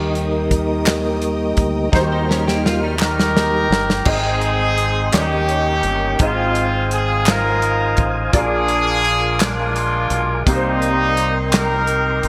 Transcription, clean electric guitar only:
2.12 2.29 D#4 medium
2.12 2.28 C5 medium
2.29 2.46 C#4 medium
2.29 2.46 A#4 medium
2.47 2.64 A#3 medium
2.47 2.64 G4 medium
2.66 2.82 F4 medium
2.83 3.86 G3 medium
2.83 3.85 D#4 medium

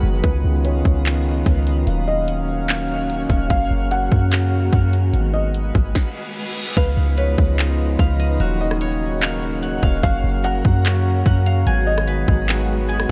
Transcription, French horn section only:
0.00 3.46 D#3 medium
0.00 0.20 F#3 medium
0.00 1.84 G#3 medium
0.00 1.84 B3 medium
0.00 0.20 F#4 medium
0.24 1.85 C#4 medium
0.24 1.85 F4 medium
1.87 5.91 F#3 medium
1.87 5.10 A#3 medium
1.87 5.10 C#4 medium
1.87 3.49 F5 medium
3.50 5.12 C#3 medium
3.50 5.93 F#4 medium
5.14 5.94 D#3 medium
5.14 5.94 G#3 medium
5.14 5.94 B3 medium
6.77 8.39 C#3 medium
6.77 8.39 F3 medium
6.77 8.39 G#3 medium
6.77 8.39 B3 medium
6.77 10.00 D#4 medium
8.40 11.63 C#3 medium
8.40 10.02 D#3 medium
8.40 13.11 F#3 medium
8.40 11.63 A#3 medium
10.03 11.65 F#4 loud
11.66 13.11 D#3 medium
11.66 13.11 G#3 medium
11.66 13.11 B3 medium
11.66 13.11 F#4 medium

